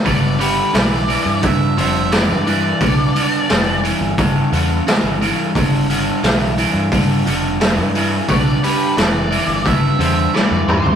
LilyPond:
<<
  \new Staff \with { instrumentName = "Lead electric guitar" } { \time 4/4 \key g \mixolydian \tempo 4 = 88 d''8 b'8 d''4 e''8 e''8 d''8 d''8~ | d''4. r2 r8 | r1 | d''8 b'8 d''4 e''8 e''8 d''8 c''8 | }
  \new Staff \with { instrumentName = "Lead electric guitar" } { \time 4/4 \key g \mixolydian b'8 g'8 b'4 b'8 c''8 b'8 b'8~ | b'4. r2 r8 | r1 | b'8 g'8 b'4 b'8 c''8 b'8 g'8 | }
  \new Staff \with { instrumentName = "Overdriven electric guitar" } { \clef bass \time 4/4 \key g \mixolydian <g, d>8 <g, d>8 <g, e>8 <g, e>8 <g, d>8 <g, d>8 <g, e>8 <g, e>8 | <g, d>8 <g, d>8 <g, e>8 <g, e>8 <g, d>8 <g, d>8 <g, e>8 <g, e>8 | <g, d>8 <g, d>8 <g, e>8 <g, e>8 <g, d>8 <g, d>8 <g, e>8 <g, e>8 | <g, d>8 <g, d>8 <g, e>8 <g, e>8 <g, d>8 <g, d>8 <g, e>8 <g, e>8 | }
  \new Staff \with { instrumentName = "Fingered electric bass" } { \clef bass \time 4/4 \key g \mixolydian g,,4 b,,8. g,8. f,,8. g,8. | b,,8 r8 f,,8. g,,8. e,8 r16 g,,8 r16 | g,,4 b,,8. g,8. f,,8. g,8. | b,,8 r8 f,,8. g,,8. e,8 r16 f,16 e,16 d,16 | }
  \new DrumStaff \with { instrumentName = "Drums" } \drummode { \time 4/4 <hho bd>8 hho8 <hho sn>8 hho8 <hho bd>8 hho8 <hho sn>8 hho8 | <hho bd>8 hho8 <hho sn>8 hho8 <hho bd>8 hho8 <hho sn>8 hho8 | <hho bd>8 hho8 <hho sn>8 hho8 <hho bd>8 hho8 <hho sn>8 hho8 | <hho bd>8 hho8 <hho sn>8 hho8 <hho bd>8 hho8 sn8 toml16 tomfh16 | }
>>